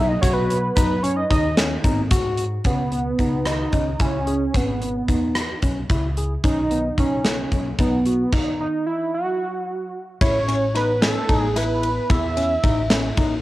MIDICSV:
0, 0, Header, 1, 5, 480
1, 0, Start_track
1, 0, Key_signature, 4, "minor"
1, 0, Tempo, 539568
1, 684, Time_signature, 7, 3, 24, 8
1, 11936, End_track
2, 0, Start_track
2, 0, Title_t, "Analog synth lead"
2, 0, Program_c, 0, 81
2, 74, Note_on_c, 0, 75, 90
2, 186, Note_off_c, 0, 75, 0
2, 191, Note_on_c, 0, 73, 93
2, 297, Note_on_c, 0, 71, 93
2, 310, Note_off_c, 0, 73, 0
2, 665, Note_off_c, 0, 71, 0
2, 671, Note_on_c, 0, 71, 91
2, 916, Note_on_c, 0, 73, 94
2, 930, Note_off_c, 0, 71, 0
2, 1036, Note_on_c, 0, 75, 90
2, 1049, Note_off_c, 0, 73, 0
2, 1159, Note_off_c, 0, 75, 0
2, 1164, Note_on_c, 0, 75, 79
2, 1386, Note_off_c, 0, 75, 0
2, 2369, Note_on_c, 0, 59, 86
2, 3082, Note_on_c, 0, 63, 88
2, 3095, Note_off_c, 0, 59, 0
2, 3562, Note_off_c, 0, 63, 0
2, 3571, Note_on_c, 0, 61, 90
2, 4059, Note_on_c, 0, 59, 75
2, 4072, Note_off_c, 0, 61, 0
2, 4772, Note_off_c, 0, 59, 0
2, 5728, Note_on_c, 0, 63, 100
2, 6174, Note_off_c, 0, 63, 0
2, 6224, Note_on_c, 0, 61, 85
2, 6663, Note_off_c, 0, 61, 0
2, 6939, Note_on_c, 0, 59, 77
2, 7410, Note_on_c, 0, 63, 87
2, 7424, Note_off_c, 0, 59, 0
2, 7649, Note_off_c, 0, 63, 0
2, 7654, Note_on_c, 0, 63, 79
2, 7874, Note_off_c, 0, 63, 0
2, 7886, Note_on_c, 0, 64, 84
2, 8110, Note_off_c, 0, 64, 0
2, 8133, Note_on_c, 0, 66, 90
2, 8815, Note_off_c, 0, 66, 0
2, 9086, Note_on_c, 0, 73, 96
2, 9533, Note_off_c, 0, 73, 0
2, 9576, Note_on_c, 0, 71, 87
2, 9795, Note_off_c, 0, 71, 0
2, 9817, Note_on_c, 0, 69, 93
2, 10137, Note_off_c, 0, 69, 0
2, 10137, Note_on_c, 0, 68, 93
2, 10296, Note_on_c, 0, 71, 90
2, 10309, Note_off_c, 0, 68, 0
2, 10773, Note_on_c, 0, 76, 103
2, 10787, Note_off_c, 0, 71, 0
2, 11488, Note_off_c, 0, 76, 0
2, 11936, End_track
3, 0, Start_track
3, 0, Title_t, "Tine electric piano"
3, 0, Program_c, 1, 4
3, 0, Note_on_c, 1, 63, 80
3, 102, Note_off_c, 1, 63, 0
3, 197, Note_on_c, 1, 66, 92
3, 486, Note_off_c, 1, 66, 0
3, 680, Note_on_c, 1, 63, 80
3, 824, Note_off_c, 1, 63, 0
3, 920, Note_on_c, 1, 61, 78
3, 1064, Note_off_c, 1, 61, 0
3, 1160, Note_on_c, 1, 63, 72
3, 1304, Note_off_c, 1, 63, 0
3, 1399, Note_on_c, 1, 61, 86
3, 1544, Note_off_c, 1, 61, 0
3, 1640, Note_on_c, 1, 63, 76
3, 1784, Note_off_c, 1, 63, 0
3, 1879, Note_on_c, 1, 66, 92
3, 2167, Note_off_c, 1, 66, 0
3, 2357, Note_on_c, 1, 61, 58
3, 2502, Note_off_c, 1, 61, 0
3, 2599, Note_on_c, 1, 59, 55
3, 2743, Note_off_c, 1, 59, 0
3, 2845, Note_on_c, 1, 63, 59
3, 3131, Note_off_c, 1, 63, 0
3, 3324, Note_on_c, 1, 61, 54
3, 3467, Note_off_c, 1, 61, 0
3, 3562, Note_on_c, 1, 64, 62
3, 3706, Note_off_c, 1, 64, 0
3, 3801, Note_on_c, 1, 68, 62
3, 3945, Note_off_c, 1, 68, 0
3, 4037, Note_on_c, 1, 61, 62
3, 4183, Note_off_c, 1, 61, 0
3, 4280, Note_on_c, 1, 59, 59
3, 4425, Note_off_c, 1, 59, 0
3, 4522, Note_on_c, 1, 63, 55
3, 4810, Note_off_c, 1, 63, 0
3, 5007, Note_on_c, 1, 61, 62
3, 5150, Note_off_c, 1, 61, 0
3, 5250, Note_on_c, 1, 64, 66
3, 5392, Note_off_c, 1, 64, 0
3, 5493, Note_on_c, 1, 68, 62
3, 5634, Note_off_c, 1, 68, 0
3, 5731, Note_on_c, 1, 61, 68
3, 5873, Note_off_c, 1, 61, 0
3, 5973, Note_on_c, 1, 59, 64
3, 6115, Note_off_c, 1, 59, 0
3, 6214, Note_on_c, 1, 63, 61
3, 6499, Note_off_c, 1, 63, 0
3, 6691, Note_on_c, 1, 61, 63
3, 6834, Note_off_c, 1, 61, 0
3, 6934, Note_on_c, 1, 63, 72
3, 7076, Note_off_c, 1, 63, 0
3, 7172, Note_on_c, 1, 66, 61
3, 7315, Note_off_c, 1, 66, 0
3, 9088, Note_on_c, 1, 64, 79
3, 9232, Note_off_c, 1, 64, 0
3, 9326, Note_on_c, 1, 61, 75
3, 9471, Note_off_c, 1, 61, 0
3, 9562, Note_on_c, 1, 63, 76
3, 9707, Note_off_c, 1, 63, 0
3, 9801, Note_on_c, 1, 61, 81
3, 9946, Note_off_c, 1, 61, 0
3, 10041, Note_on_c, 1, 63, 80
3, 10186, Note_off_c, 1, 63, 0
3, 10283, Note_on_c, 1, 64, 83
3, 10571, Note_off_c, 1, 64, 0
3, 10761, Note_on_c, 1, 64, 78
3, 10906, Note_off_c, 1, 64, 0
3, 11004, Note_on_c, 1, 61, 74
3, 11148, Note_off_c, 1, 61, 0
3, 11244, Note_on_c, 1, 63, 74
3, 11388, Note_off_c, 1, 63, 0
3, 11484, Note_on_c, 1, 61, 75
3, 11627, Note_off_c, 1, 61, 0
3, 11723, Note_on_c, 1, 63, 72
3, 11866, Note_off_c, 1, 63, 0
3, 11936, End_track
4, 0, Start_track
4, 0, Title_t, "Upright bass"
4, 0, Program_c, 2, 32
4, 0, Note_on_c, 2, 35, 96
4, 166, Note_off_c, 2, 35, 0
4, 204, Note_on_c, 2, 35, 93
4, 606, Note_off_c, 2, 35, 0
4, 683, Note_on_c, 2, 42, 93
4, 1086, Note_off_c, 2, 42, 0
4, 1160, Note_on_c, 2, 39, 88
4, 1563, Note_off_c, 2, 39, 0
4, 1639, Note_on_c, 2, 32, 91
4, 1842, Note_off_c, 2, 32, 0
4, 1875, Note_on_c, 2, 44, 103
4, 2280, Note_off_c, 2, 44, 0
4, 2353, Note_on_c, 2, 37, 80
4, 2759, Note_off_c, 2, 37, 0
4, 2835, Note_on_c, 2, 37, 69
4, 3241, Note_off_c, 2, 37, 0
4, 3317, Note_on_c, 2, 37, 67
4, 3520, Note_off_c, 2, 37, 0
4, 3557, Note_on_c, 2, 37, 71
4, 3962, Note_off_c, 2, 37, 0
4, 4041, Note_on_c, 2, 32, 70
4, 4445, Note_off_c, 2, 32, 0
4, 4520, Note_on_c, 2, 40, 65
4, 4925, Note_off_c, 2, 40, 0
4, 5004, Note_on_c, 2, 35, 67
4, 5206, Note_off_c, 2, 35, 0
4, 5246, Note_on_c, 2, 37, 77
4, 5649, Note_off_c, 2, 37, 0
4, 5728, Note_on_c, 2, 35, 80
4, 6130, Note_off_c, 2, 35, 0
4, 6209, Note_on_c, 2, 35, 70
4, 6612, Note_off_c, 2, 35, 0
4, 6687, Note_on_c, 2, 35, 73
4, 6889, Note_off_c, 2, 35, 0
4, 6926, Note_on_c, 2, 35, 73
4, 7330, Note_off_c, 2, 35, 0
4, 9085, Note_on_c, 2, 33, 103
4, 9891, Note_off_c, 2, 33, 0
4, 10043, Note_on_c, 2, 33, 91
4, 10648, Note_off_c, 2, 33, 0
4, 10764, Note_on_c, 2, 40, 97
4, 11167, Note_off_c, 2, 40, 0
4, 11241, Note_on_c, 2, 33, 89
4, 11644, Note_off_c, 2, 33, 0
4, 11719, Note_on_c, 2, 33, 87
4, 11921, Note_off_c, 2, 33, 0
4, 11936, End_track
5, 0, Start_track
5, 0, Title_t, "Drums"
5, 203, Note_on_c, 9, 36, 100
5, 206, Note_on_c, 9, 42, 86
5, 207, Note_on_c, 9, 82, 47
5, 292, Note_off_c, 9, 36, 0
5, 295, Note_off_c, 9, 42, 0
5, 296, Note_off_c, 9, 82, 0
5, 448, Note_on_c, 9, 42, 66
5, 537, Note_off_c, 9, 42, 0
5, 682, Note_on_c, 9, 36, 106
5, 684, Note_on_c, 9, 42, 85
5, 685, Note_on_c, 9, 82, 59
5, 771, Note_off_c, 9, 36, 0
5, 773, Note_off_c, 9, 42, 0
5, 774, Note_off_c, 9, 82, 0
5, 924, Note_on_c, 9, 42, 69
5, 1013, Note_off_c, 9, 42, 0
5, 1162, Note_on_c, 9, 36, 80
5, 1164, Note_on_c, 9, 42, 70
5, 1251, Note_off_c, 9, 36, 0
5, 1253, Note_off_c, 9, 42, 0
5, 1399, Note_on_c, 9, 38, 120
5, 1399, Note_on_c, 9, 42, 88
5, 1409, Note_on_c, 9, 82, 45
5, 1488, Note_off_c, 9, 38, 0
5, 1488, Note_off_c, 9, 42, 0
5, 1498, Note_off_c, 9, 82, 0
5, 1638, Note_on_c, 9, 36, 81
5, 1639, Note_on_c, 9, 42, 66
5, 1727, Note_off_c, 9, 36, 0
5, 1728, Note_off_c, 9, 42, 0
5, 1875, Note_on_c, 9, 42, 88
5, 1877, Note_on_c, 9, 36, 101
5, 1888, Note_on_c, 9, 82, 49
5, 1964, Note_off_c, 9, 42, 0
5, 1966, Note_off_c, 9, 36, 0
5, 1977, Note_off_c, 9, 82, 0
5, 2112, Note_on_c, 9, 42, 63
5, 2130, Note_on_c, 9, 82, 20
5, 2201, Note_off_c, 9, 42, 0
5, 2219, Note_off_c, 9, 82, 0
5, 2352, Note_on_c, 9, 42, 56
5, 2356, Note_on_c, 9, 36, 78
5, 2441, Note_off_c, 9, 42, 0
5, 2445, Note_off_c, 9, 36, 0
5, 2596, Note_on_c, 9, 42, 44
5, 2685, Note_off_c, 9, 42, 0
5, 2835, Note_on_c, 9, 42, 45
5, 2836, Note_on_c, 9, 36, 58
5, 2924, Note_off_c, 9, 42, 0
5, 2925, Note_off_c, 9, 36, 0
5, 3074, Note_on_c, 9, 37, 81
5, 3074, Note_on_c, 9, 42, 67
5, 3163, Note_off_c, 9, 37, 0
5, 3163, Note_off_c, 9, 42, 0
5, 3314, Note_on_c, 9, 42, 45
5, 3317, Note_on_c, 9, 36, 61
5, 3403, Note_off_c, 9, 42, 0
5, 3406, Note_off_c, 9, 36, 0
5, 3555, Note_on_c, 9, 42, 60
5, 3558, Note_on_c, 9, 36, 84
5, 3644, Note_off_c, 9, 42, 0
5, 3647, Note_off_c, 9, 36, 0
5, 3798, Note_on_c, 9, 42, 45
5, 3887, Note_off_c, 9, 42, 0
5, 4041, Note_on_c, 9, 42, 63
5, 4042, Note_on_c, 9, 36, 75
5, 4130, Note_off_c, 9, 42, 0
5, 4131, Note_off_c, 9, 36, 0
5, 4284, Note_on_c, 9, 42, 50
5, 4373, Note_off_c, 9, 42, 0
5, 4521, Note_on_c, 9, 42, 50
5, 4522, Note_on_c, 9, 36, 61
5, 4610, Note_off_c, 9, 42, 0
5, 4611, Note_off_c, 9, 36, 0
5, 4760, Note_on_c, 9, 37, 94
5, 4760, Note_on_c, 9, 42, 67
5, 4849, Note_off_c, 9, 37, 0
5, 4849, Note_off_c, 9, 42, 0
5, 5001, Note_on_c, 9, 42, 50
5, 5004, Note_on_c, 9, 36, 60
5, 5090, Note_off_c, 9, 42, 0
5, 5093, Note_off_c, 9, 36, 0
5, 5244, Note_on_c, 9, 42, 63
5, 5246, Note_on_c, 9, 36, 82
5, 5333, Note_off_c, 9, 42, 0
5, 5335, Note_off_c, 9, 36, 0
5, 5488, Note_on_c, 9, 42, 50
5, 5577, Note_off_c, 9, 42, 0
5, 5726, Note_on_c, 9, 42, 63
5, 5727, Note_on_c, 9, 36, 83
5, 5815, Note_off_c, 9, 42, 0
5, 5816, Note_off_c, 9, 36, 0
5, 5968, Note_on_c, 9, 42, 54
5, 6057, Note_off_c, 9, 42, 0
5, 6208, Note_on_c, 9, 36, 67
5, 6211, Note_on_c, 9, 42, 49
5, 6297, Note_off_c, 9, 36, 0
5, 6300, Note_off_c, 9, 42, 0
5, 6446, Note_on_c, 9, 38, 91
5, 6446, Note_on_c, 9, 42, 69
5, 6535, Note_off_c, 9, 38, 0
5, 6535, Note_off_c, 9, 42, 0
5, 6687, Note_on_c, 9, 36, 59
5, 6687, Note_on_c, 9, 42, 47
5, 6775, Note_off_c, 9, 42, 0
5, 6776, Note_off_c, 9, 36, 0
5, 6926, Note_on_c, 9, 42, 58
5, 6927, Note_on_c, 9, 36, 85
5, 7015, Note_off_c, 9, 42, 0
5, 7016, Note_off_c, 9, 36, 0
5, 7166, Note_on_c, 9, 42, 47
5, 7255, Note_off_c, 9, 42, 0
5, 7406, Note_on_c, 9, 49, 68
5, 7407, Note_on_c, 9, 36, 85
5, 7495, Note_off_c, 9, 49, 0
5, 7496, Note_off_c, 9, 36, 0
5, 9086, Note_on_c, 9, 36, 104
5, 9086, Note_on_c, 9, 51, 80
5, 9175, Note_off_c, 9, 36, 0
5, 9175, Note_off_c, 9, 51, 0
5, 9329, Note_on_c, 9, 51, 65
5, 9418, Note_off_c, 9, 51, 0
5, 9568, Note_on_c, 9, 38, 32
5, 9568, Note_on_c, 9, 51, 65
5, 9657, Note_off_c, 9, 38, 0
5, 9657, Note_off_c, 9, 51, 0
5, 9806, Note_on_c, 9, 38, 111
5, 9806, Note_on_c, 9, 51, 83
5, 9894, Note_off_c, 9, 38, 0
5, 9894, Note_off_c, 9, 51, 0
5, 10045, Note_on_c, 9, 36, 78
5, 10046, Note_on_c, 9, 51, 58
5, 10134, Note_off_c, 9, 36, 0
5, 10135, Note_off_c, 9, 51, 0
5, 10286, Note_on_c, 9, 38, 35
5, 10286, Note_on_c, 9, 51, 79
5, 10375, Note_off_c, 9, 38, 0
5, 10375, Note_off_c, 9, 51, 0
5, 10526, Note_on_c, 9, 51, 60
5, 10615, Note_off_c, 9, 51, 0
5, 10763, Note_on_c, 9, 51, 71
5, 10764, Note_on_c, 9, 36, 103
5, 10852, Note_off_c, 9, 51, 0
5, 10853, Note_off_c, 9, 36, 0
5, 11004, Note_on_c, 9, 51, 62
5, 11093, Note_off_c, 9, 51, 0
5, 11241, Note_on_c, 9, 51, 59
5, 11242, Note_on_c, 9, 36, 85
5, 11330, Note_off_c, 9, 51, 0
5, 11331, Note_off_c, 9, 36, 0
5, 11477, Note_on_c, 9, 38, 118
5, 11477, Note_on_c, 9, 51, 87
5, 11566, Note_off_c, 9, 38, 0
5, 11566, Note_off_c, 9, 51, 0
5, 11718, Note_on_c, 9, 51, 67
5, 11720, Note_on_c, 9, 36, 77
5, 11807, Note_off_c, 9, 51, 0
5, 11809, Note_off_c, 9, 36, 0
5, 11936, End_track
0, 0, End_of_file